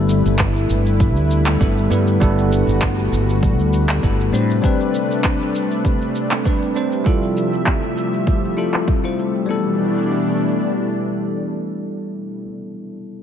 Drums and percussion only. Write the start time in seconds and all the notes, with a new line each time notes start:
0.09 shaker
0.26 shaker
0.39 kick, clap, shaker
0.56 shaker
0.70 shaker
0.86 shaker
1.00 kick, shaker
1.17 shaker
1.31 shaker
1.46 clap, shaker
1.61 kick, shaker
1.78 shaker
1.91 shaker
2.07 shaker
2.21 kick, shaker
2.38 shaker
2.52 shaker
2.69 shaker
2.82 kick, clap, shaker
2.99 shaker
3.13 shaker
3.29 shaker
3.43 kick, shaker
3.59 shaker
3.73 shaker
3.89 clap, shaker
4.03 kick, shaker
4.20 shaker
4.34 shaker
4.50 shaker
4.64 kick, shaker
4.81 shaker
4.94 shaker
5.11 shaker
5.24 kick, clap, shaker
5.41 shaker
5.55 shaker
5.72 shaker
5.85 kick, shaker
6.02 shaker
6.15 shaker
6.31 clap, shaker
6.45 kick, shaker
6.62 shaker
6.76 shaker
6.92 shaker
7.06 kick, shaker
7.23 shaker
7.37 shaker
7.53 shaker
7.66 kick, clap, shaker
7.83 shaker
7.97 shaker
8.14 shaker
8.27 kick, shaker
8.44 shaker
8.58 shaker
8.74 clap, shaker
8.88 kick, shaker
9.05 shaker
9.19 shaker
9.35 shaker